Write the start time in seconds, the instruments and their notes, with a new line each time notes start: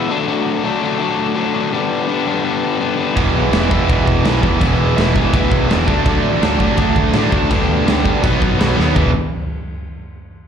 0.10 distorted electric guitar D3 F#3 A3 D4
0.27 distorted electric guitar D3 F#3 A3 D4
0.64 distorted electric guitar D3 F#3 A3 D4
0.82 distorted electric guitar D3 F#3 A3 D4
0.99 distorted electric guitar D3 F#3 A3 D4
1.35 distorted electric guitar D3 F#3 A3 D4
1.54 distorted electric guitar D3 F#3 A3 D4
1.72 distorted electric guitar D3 G3 B3 D4
2.08 distorted electric guitar D3 G3 B3 D4
2.26 distorted electric guitar D3 G3 B3 D4
2.44 distorted electric guitar D3 G3 B3 D4
2.80 distorted electric guitar D3 G3 B3 D4
2.98 distorted electric guitar D3 G3 B3 D4
3.15 picked electric bass E1, distorted electric guitar E2 B2 E3 G#3 B3 E4, kick, crash
3.34 picked electric bass B1
3.52 picked electric bass E1, distorted electric guitar E2 B2 E3 G#3 B3 E4, snare, crash
3.70 distorted electric guitar E2 B2 E3 G#3 B3 E4, kick
3.88 picked electric bass E1, distorted electric guitar E2 B2 E3 G#3 B3 E4, kick, crash
4.07 picked electric bass E1, kick
4.24 picked electric bass B1, distorted electric guitar E2 B2 E3 G#3 B3 E4, snare, crash
4.41 picked electric bass E1, distorted electric guitar E2 B2 E3 G#3 B3 E4, kick
4.59 picked electric bass E1, distorted electric guitar E2 B2 E3 G#3 B3 E4, kick, crash
4.78 picked electric bass E1
4.96 picked electric bass E1, distorted electric guitar E2 B2 E3 G#3 B3 E4, snare, crash
5.14 distorted electric guitar E2 B2 E3 G#3 B3 E4, kick
5.32 picked electric bass D2, distorted electric guitar E2 B2 E3 G#3 B3 E4, kick, crash
5.51 picked electric bass B1, kick
5.68 picked electric bass E1, distorted electric guitar E2 B2 E3 G#3 B3 E4, snare, crash
5.86 picked electric bass D2, distorted electric guitar D3 F#3 A3 D4, kick
6.05 picked electric bass D2, distorted electric guitar D3 F#3 A3 D4, kick, crash
6.24 picked electric bass A1
6.41 picked electric bass D2, distorted electric guitar D3 F#3 A3 D4, snare, crash
6.59 distorted electric guitar D3 F#3 A3 D4, kick
6.77 picked electric bass D2, distorted electric guitar D3 F#3 A3 D4, kick, crash
6.96 picked electric bass D2, kick
7.13 picked electric bass A2, distorted electric guitar D3 F#3 A3 D4, snare, crash
7.32 picked electric bass D2, distorted electric guitar D3 F#3 A3 D4, kick
7.50 picked electric bass D2, distorted electric guitar G2 D3 G3 B3 D4, kick, crash
7.69 picked electric bass D2
7.86 picked electric bass D2, distorted electric guitar G2 D3 G3 B3 D4, snare, crash
8.04 distorted electric guitar G2 D3 G3 B3 D4, kick
8.23 picked electric bass B1, distorted electric guitar B2 F#3 B3 D#4, kick, crash
8.42 picked electric bass F#2, kick
8.58 picked electric bass B1, distorted electric guitar B2 F#3 B3 D#4, snare, crash
8.76 picked electric bass D#2, distorted electric guitar B2 F#3 B3 D#4, snare
8.95 picked electric bass E1, distorted electric guitar E2 B2 E3 G#3 B3 E4, kick, floor tom